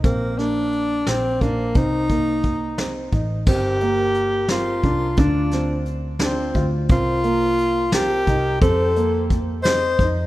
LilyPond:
<<
  \new Staff \with { instrumentName = "Flugelhorn" } { \time 5/8 \key c \dorian \tempo 4 = 87 r2 r8 | r2 r8 | bes'4. bes'4 | f'4 r8 f'8. r16 |
bes'4. bes'4 | c''4 r8 ees''8. r16 | }
  \new Staff \with { instrumentName = "Tenor saxophone" } { \time 5/8 \key c \dorian bes8 d'4 c'8 bes8 | ees'2 r8 | g'4. f'4 | d'4 r8 c'8. r16 |
f'4. g'4 | a'4 r8 c''8. r16 | }
  \new Staff \with { instrumentName = "Grand piano" } { \time 5/8 \key c \dorian c'8 bes4 c'8 d'8 | c'8 bes4 c'8 ees'8 | c'8 bes4 c'8 d'8 | d'8 c'4 d'8 f'8 |
c'8 bes4 c'8 ees'8 | c'8 bes4 c'8 ees'8 | }
  \new Staff \with { instrumentName = "Picked electric bass" } { \clef bass \time 5/8 \key c \dorian bes,,4. bes,,8 bes,,8 | c,2 a,,8 | g,,2 c,8 | d,2 d,8 |
c,2 c,8 | f,2 f,8 | }
  \new DrumStaff \with { instrumentName = "Drums" } \drummode { \time 5/8 <hh bd>8 <hh sn>8 hh8 <hh sn>8 <hh bd>8 | <hh bd>8 <hh bd>8 <hh bd>8 <hh sn>8 <hh bd>8 | <cymc bd>8 hh8 hh8 <hh sn>8 <hh bd>8 | <hh bd>8 <hh sn>8 hh8 <hh sn>8 <hh bd>8 |
<hh bd>8 hh8 hh8 <hh sn>8 <hh bd>8 | <hh bd>8 hh8 <hh bd>8 <hh sn>8 <hh bd>8 | }
>>